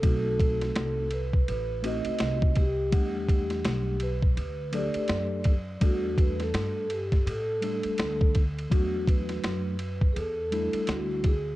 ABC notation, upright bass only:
X:1
M:4/4
L:1/16
Q:"Swing 16ths" 1/4=83
K:Em
V:1 name="Upright bass" clef=bass
B,,,4 C,,4 A,,,3 z C,,4 | E,,4 B,,,4 D,,3 z F,,4 | E,,4 G,,4 A,,3 z D,,4 | E,,4 F,,4 E,,3 z D,,4 |]